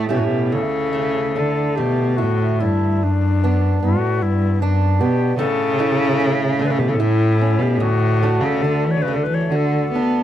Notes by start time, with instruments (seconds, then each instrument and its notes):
Already playing: steel-string acoustic guitar A2, cello A3
0.09 cello B2, steel-string acoustic guitar A3 C#4 E4, recorder G4
0.17 cello A2, recorder F#4
0.24 cello B2, recorder G4
0.52 steel-string acoustic guitar D2, cello C#3, recorder A4
0.93 steel-string acoustic guitar A3 E4
1.35 cello D3, steel-string acoustic guitar D4, recorder A4
1.76 cello B2, steel-string acoustic guitar A3, recorder G4
2.17 steel-string acoustic guitar E4, recorder F#4
2.22 cello A2
2.60 cello G2, steel-string acoustic guitar D4, recorder E4
3.03 cello F#2, recorder D4
3.43 steel-string acoustic guitar B3 D4
3.83 cello A2, steel-string acoustic guitar B3, recorder F#4
4.21 cello G2, recorder E4
4.60 cello F#2, recorder D4, steel-string acoustic guitar D4
5.00 cello B2, steel-string acoustic guitar B3, recorder G4
5.37 steel-string acoustic guitar A2, cello C#3, recorder A4
5.79 steel-string acoustic guitar A3 C#4 E4
6.20 steel-string acoustic guitar C#4
6.59 cello D3, steel-string acoustic guitar A3
6.64 recorder B4
6.70 cello C#3, recorder A4
6.78 cello B2, recorder G4
6.88 cello C#3, recorder A4
6.97 cello A2, steel-string acoustic guitar E4, recorder E4
7.41 steel-string acoustic guitar C#4
7.59 cello B2, recorder G4
7.77 steel-string acoustic guitar D2, cello A2
7.82 recorder F#4
8.22 steel-string acoustic guitar A3 D4 F#4
8.40 cello C#3
8.45 recorder A4
8.61 cello D3, steel-string acoustic guitar D4
8.68 recorder A4
8.87 cello E3
8.91 recorder C#5
8.97 cello D3
9.02 cello C#3, recorder B4
9.08 steel-string acoustic guitar A3
9.13 cello D3, recorder A4
9.23 cello E3, recorder B4
9.34 recorder C#5
9.40 cello E3
9.46 cello D3, recorder C#5
9.52 steel-string acoustic guitar F#4, recorder A4
9.92 cello B3, steel-string acoustic guitar D4